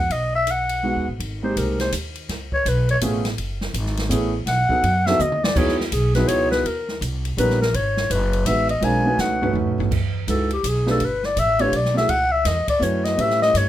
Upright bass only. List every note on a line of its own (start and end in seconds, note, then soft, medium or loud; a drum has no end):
0.10 0.91 B1 medium
0.96 1.07 D#2 medium
1.08 1.19 A1 medium
1.20 1.55 G#1 medium
1.57 1.92 C2 medium
1.93 2.28 D#2 medium
2.29 2.64 C#2 medium
2.65 3.00 B1 medium
3.01 3.37 A1 medium
3.38 3.73 F#1 medium
3.74 4.09 G#1 medium
4.10 4.46 A1 medium
4.46 4.68 B1 medium
4.70 muted upright bass stroke soft
4.83 5.18 F#2 medium
5.19 5.55 D#2 medium
5.56 5.91 E2 medium
5.92 6.27 B1 medium
6.28 6.63 C#2 medium
6.65 7.00 D#2 medium
7.01 7.36 C2 medium
7.37 7.72 A#1 medium
7.74 8.09 G#1 medium
8.10 8.45 F#1 loud
8.45 8.81 A1 medium
8.82 9.17 B1 medium
9.18 9.53 C#2 medium
9.53 9.66 D#2 medium
9.66 9.77 B1 soft
9.78 9.90 A1 medium
9.91 10.26 E2 medium
10.27 10.63 C#2 medium
10.63 10.99 B1 medium
11.00 11.36 G1 medium
11.36 11.72 A1 medium
11.73 12.08 B1 medium
12.09 12.44 C#2 medium
12.45 12.67 E2 loud
12.67 muted upright bass stroke soft
12.81 13.17 F#2 medium
13.18 13.53 A2 medium
13.54 13.69 G2 loud